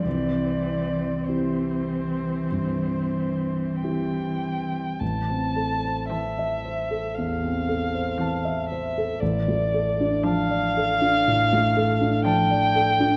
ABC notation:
X:1
M:4/4
L:1/16
Q:1/4=58
K:C
V:1 name="Violin"
d4 c8 g4 | [K:Am] a4 e4 f6 e2 | d4 f8 g4 |]
V:2 name="Grand piano"
C,,4 [CEG]4 G,,4 [CEG]4 | [K:Am] A,,, C A c a e c A E,, C A c a e c A | A,,, A, A D a d A D A,, A, A D a d A D |]
V:3 name="Viola"
C4 C12 | [K:Am] z4 C4 z4 C4 | z4 D4 z4 D4 |]
V:4 name="Cello" clef=bass
E,4 E,12 | [K:Am] z4 E,4 z4 E,4 | z4 F,4 z4 F,4 |]